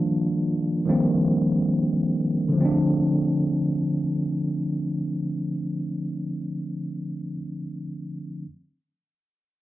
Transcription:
Already playing: D#3 F3 G3 A#3 D4 F4
0.85 D#3 F3 G3 A#3 C4
2.49 D3
2.53 F3
2.57 A3
2.61 C4
2.65 D4

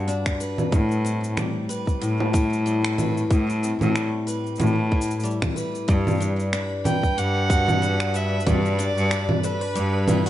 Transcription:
Already playing: G3 F#4 B4
0.08 D4, cabasa
0.26 finger snap, kick, cabasa
0.40 B4, cabasa
0.58 low conga, cabasa
0.72 A2, kick, cabasa
0.91 cabasa
1.05 C4, cabasa
1.24 cabasa
1.37 G3, finger snap, low conga, cabasa
1.69 B4, cabasa
1.87 kick, cabasa
2.01 A2, cabasa
2.20 low conga
2.33 E4, kick, cabasa
2.53 cabasa
2.66 G3, cabasa
2.85 finger snap, cabasa
2.98 B4, low conga, cabasa
3.17 cabasa
3.30 A2, kick, cabasa
3.50 cabasa
3.63 C4, cabasa
3.80 A2, low conga, cabasa
3.95 G3, finger snap, cabasa
4.27 B4, cabasa
4.46 cabasa
4.56 A2, cabasa
4.60 low conga, cabasa
4.66 cabasa
4.92 E4, kick
5.01 cabasa
5.11 cabasa
5.20 G3, cabasa
5.25 cabasa
5.31 cabasa
5.42 finger snap, kick, low conga, cabasa
5.56 B4, cabasa
5.75 cabasa
5.88 G2 G3 B4 B5, kick, cabasa
6.07 low conga, cabasa
6.10 cabasa
6.15 cabasa
6.17 cabasa
6.20 D4, cabasa
6.22 cabasa
6.40 cabasa
6.53 D4, finger snap, cabasa
6.85 B4 G5, low conga, cabasa
7.03 kick, cabasa
7.17 G2 G3 F#5, cabasa
7.50 F#4, kick, cabasa
7.68 low conga, cabasa
7.82 D4, cabasa
8.00 finger snap, cabasa
8.14 B4 E5, cabasa
8.40 cabasa
8.46 G2 G3 D5, kick, low conga, cabasa
8.65 cabasa
8.79 D4, cabasa
8.97 G2, cabasa
9.11 D4, finger snap, cabasa
9.29 low conga
9.43 A4 B4, cabasa
9.61 B4
9.75 G2 G3, cabasa
10.08 E4, low conga, cabasa
10.26 F#4, cabasa

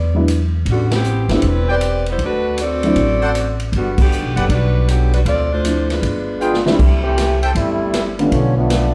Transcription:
Already playing: E2 B3 D5
0.14 F#3 G#3 B3 D4 E4
0.28 hi-hat pedal, ride
0.65 A1, kick, ride
0.70 D3 G3 B3 F#4
0.91 C4, snare, ride
0.95 E3 B3 G4
1.04 hi-hat pedal
1.29 G1 G3 B3 C4 D4 E4, snare, ride
1.34 G3 C4 E4 A4
1.42 E1, kick, ride
1.48 G3 C4 E4 B4
1.68 C4 G4 B4 C5 D5 G5
1.81 hi-hat pedal, ride
2.06 ride
2.11 G3 B3 E4 C5
2.18 D2, kick, ride
2.24 A3 D4 F#4 B4
2.58 A4 D5, hi-hat pedal, ride
2.62 C4 F#4
2.83 F#3 A3 C4 D4 E4, ride
2.96 A1, kick, ride
3.21 A4 C5 D5 F#5
3.35 hi-hat pedal, ride
3.60 ride
3.72 G1, kick, ride
3.76 D3 G3 B3 F#4
3.98 D3 B3 F#4 G4, kick, crash
4.12 hi-hat pedal
4.23 B1
4.36 F#1 G4 B4 D5 F#5, ride
4.40 F#3 B3 D4 A4
4.49 B1 G3 D4 F#4 B4, kick, ride
4.88 D3 F#3 B3 G4, hi-hat pedal, ride
5.13 G3 D4 F#4 B4, ride
5.25 D2 C4 F4 A4 D5, kick, ride
5.53 A3 D4 F4 C5
5.64 F3 A3 C4 D4 E4, hi-hat pedal, ride
5.90 G#3 D4 F4 B4, snare, ride
6.02 G1, kick, ride
6.40 G#3 B3 D4 F4 G#4 B4 F5 G5, hi-hat pedal
6.54 snare
6.65 E3 G3 A3 C4 D4 E4, snare
6.79 C2, kick, crash
7.03 E3 A3 C4 G4
7.17 snare, hi-hat pedal, ride
7.42 A4 C5 E5 G5, ride
7.54 G1 G3 A3 C4 E4, kick, ride
7.93 snare, hi-hat pedal, ride
8.19 D3 E3 G3 A3 B3 C#4 D4 F4, ride
8.31 B1 D3 F3 A3 C#4, kick, ride
8.56 F3 A3 B3 D4
8.70 snare, hi-hat pedal, ride

